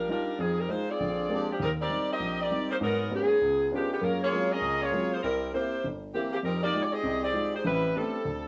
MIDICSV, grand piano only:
0, 0, Header, 1, 2, 480
1, 0, Start_track
1, 0, Key_signature, -3, "major"
1, 0, Tempo, 302419
1, 608, Time_signature, 4, 2, 24, 8
1, 13456, End_track
2, 0, Start_track
2, 0, Title_t, "Grand piano"
2, 0, Program_c, 0, 0
2, 128, Note_on_c, 0, 55, 47
2, 134, Note_on_c, 0, 62, 41
2, 139, Note_on_c, 0, 63, 44
2, 148, Note_on_c, 0, 65, 54
2, 445, Note_off_c, 0, 55, 0
2, 447, Note_off_c, 0, 62, 0
2, 450, Note_off_c, 0, 63, 0
2, 455, Note_off_c, 0, 65, 0
2, 613, Note_on_c, 0, 41, 64
2, 1023, Note_off_c, 0, 41, 0
2, 1093, Note_on_c, 0, 56, 47
2, 1099, Note_on_c, 0, 63, 43
2, 1105, Note_on_c, 0, 65, 48
2, 1407, Note_off_c, 0, 56, 0
2, 1410, Note_off_c, 0, 63, 0
2, 1413, Note_off_c, 0, 65, 0
2, 1588, Note_on_c, 0, 34, 59
2, 1595, Note_on_c, 0, 50, 56
2, 1992, Note_off_c, 0, 34, 0
2, 1995, Note_off_c, 0, 50, 0
2, 2048, Note_on_c, 0, 56, 48
2, 2050, Note_on_c, 0, 58, 43
2, 2051, Note_on_c, 0, 60, 40
2, 2053, Note_on_c, 0, 62, 42
2, 2062, Note_on_c, 0, 67, 53
2, 2365, Note_off_c, 0, 56, 0
2, 2366, Note_off_c, 0, 58, 0
2, 2367, Note_off_c, 0, 60, 0
2, 2367, Note_off_c, 0, 62, 0
2, 2372, Note_off_c, 0, 67, 0
2, 2535, Note_on_c, 0, 39, 59
2, 2944, Note_off_c, 0, 39, 0
2, 3002, Note_on_c, 0, 55, 44
2, 3015, Note_on_c, 0, 63, 52
2, 3018, Note_on_c, 0, 60, 42
2, 3322, Note_off_c, 0, 55, 0
2, 3328, Note_off_c, 0, 63, 0
2, 3330, Note_off_c, 0, 60, 0
2, 3486, Note_on_c, 0, 34, 60
2, 3900, Note_off_c, 0, 34, 0
2, 3976, Note_on_c, 0, 60, 44
2, 3978, Note_on_c, 0, 55, 48
2, 3984, Note_on_c, 0, 63, 55
2, 4289, Note_off_c, 0, 60, 0
2, 4290, Note_off_c, 0, 55, 0
2, 4293, Note_off_c, 0, 63, 0
2, 4457, Note_on_c, 0, 44, 63
2, 4461, Note_on_c, 0, 56, 62
2, 4866, Note_off_c, 0, 44, 0
2, 4868, Note_off_c, 0, 56, 0
2, 4929, Note_on_c, 0, 56, 46
2, 4938, Note_on_c, 0, 58, 43
2, 4939, Note_on_c, 0, 61, 44
2, 4941, Note_on_c, 0, 59, 44
2, 4943, Note_on_c, 0, 66, 54
2, 5245, Note_off_c, 0, 56, 0
2, 5250, Note_off_c, 0, 58, 0
2, 5250, Note_off_c, 0, 61, 0
2, 5251, Note_off_c, 0, 59, 0
2, 5253, Note_off_c, 0, 66, 0
2, 5416, Note_on_c, 0, 37, 60
2, 5825, Note_off_c, 0, 37, 0
2, 5900, Note_on_c, 0, 59, 52
2, 5901, Note_on_c, 0, 61, 48
2, 5904, Note_on_c, 0, 65, 54
2, 5906, Note_on_c, 0, 62, 45
2, 6211, Note_off_c, 0, 59, 0
2, 6211, Note_off_c, 0, 61, 0
2, 6213, Note_off_c, 0, 65, 0
2, 6214, Note_off_c, 0, 62, 0
2, 6367, Note_on_c, 0, 58, 63
2, 6372, Note_on_c, 0, 42, 63
2, 6780, Note_off_c, 0, 58, 0
2, 6783, Note_off_c, 0, 42, 0
2, 6858, Note_on_c, 0, 54, 49
2, 6859, Note_on_c, 0, 58, 45
2, 6865, Note_on_c, 0, 56, 44
2, 6870, Note_on_c, 0, 60, 42
2, 6871, Note_on_c, 0, 65, 51
2, 7170, Note_off_c, 0, 54, 0
2, 7171, Note_off_c, 0, 58, 0
2, 7173, Note_off_c, 0, 56, 0
2, 7176, Note_off_c, 0, 60, 0
2, 7176, Note_off_c, 0, 65, 0
2, 7320, Note_on_c, 0, 37, 60
2, 7736, Note_off_c, 0, 37, 0
2, 7805, Note_on_c, 0, 54, 46
2, 7805, Note_on_c, 0, 56, 47
2, 7817, Note_on_c, 0, 58, 43
2, 7817, Note_on_c, 0, 65, 53
2, 7818, Note_on_c, 0, 60, 44
2, 8123, Note_off_c, 0, 54, 0
2, 8123, Note_off_c, 0, 56, 0
2, 8129, Note_off_c, 0, 58, 0
2, 8129, Note_off_c, 0, 60, 0
2, 8129, Note_off_c, 0, 65, 0
2, 8308, Note_on_c, 0, 36, 64
2, 8711, Note_off_c, 0, 36, 0
2, 8776, Note_on_c, 0, 58, 47
2, 8779, Note_on_c, 0, 60, 46
2, 8783, Note_on_c, 0, 64, 51
2, 9089, Note_off_c, 0, 58, 0
2, 9090, Note_off_c, 0, 60, 0
2, 9092, Note_off_c, 0, 64, 0
2, 9274, Note_on_c, 0, 31, 58
2, 9674, Note_off_c, 0, 31, 0
2, 9755, Note_on_c, 0, 58, 47
2, 9763, Note_on_c, 0, 60, 43
2, 9769, Note_on_c, 0, 64, 56
2, 10057, Note_off_c, 0, 58, 0
2, 10061, Note_off_c, 0, 60, 0
2, 10065, Note_off_c, 0, 64, 0
2, 10206, Note_on_c, 0, 41, 63
2, 10619, Note_off_c, 0, 41, 0
2, 10695, Note_on_c, 0, 56, 50
2, 10698, Note_on_c, 0, 65, 41
2, 10699, Note_on_c, 0, 63, 42
2, 10709, Note_on_c, 0, 67, 52
2, 11008, Note_off_c, 0, 56, 0
2, 11009, Note_off_c, 0, 63, 0
2, 11009, Note_off_c, 0, 65, 0
2, 11015, Note_off_c, 0, 67, 0
2, 11157, Note_on_c, 0, 48, 61
2, 11163, Note_on_c, 0, 36, 59
2, 11574, Note_off_c, 0, 48, 0
2, 11577, Note_off_c, 0, 36, 0
2, 11637, Note_on_c, 0, 56, 47
2, 11637, Note_on_c, 0, 63, 45
2, 11639, Note_on_c, 0, 65, 46
2, 11644, Note_on_c, 0, 67, 58
2, 11958, Note_off_c, 0, 56, 0
2, 11958, Note_off_c, 0, 63, 0
2, 11959, Note_off_c, 0, 65, 0
2, 11962, Note_off_c, 0, 67, 0
2, 12137, Note_on_c, 0, 33, 65
2, 12544, Note_off_c, 0, 33, 0
2, 12616, Note_on_c, 0, 59, 43
2, 12618, Note_on_c, 0, 57, 49
2, 12627, Note_on_c, 0, 62, 47
2, 12628, Note_on_c, 0, 60, 43
2, 12632, Note_on_c, 0, 67, 54
2, 12927, Note_off_c, 0, 59, 0
2, 12928, Note_off_c, 0, 57, 0
2, 12932, Note_off_c, 0, 62, 0
2, 12933, Note_off_c, 0, 60, 0
2, 12935, Note_off_c, 0, 67, 0
2, 13096, Note_on_c, 0, 38, 60
2, 13456, Note_off_c, 0, 38, 0
2, 13456, End_track
0, 0, End_of_file